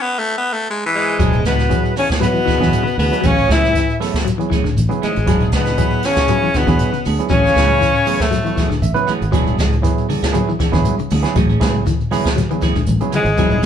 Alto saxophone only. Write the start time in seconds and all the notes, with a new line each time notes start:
0.95 G#3
1.46 B3
1.99 C#4
2.23 B3
2.99 B3
3.26 C#4
3.51 E4
5.03 G#3
5.56 B3
6.05 C#4
6.57 B3
7.30 C#4
8.22 A3
13.15 G#3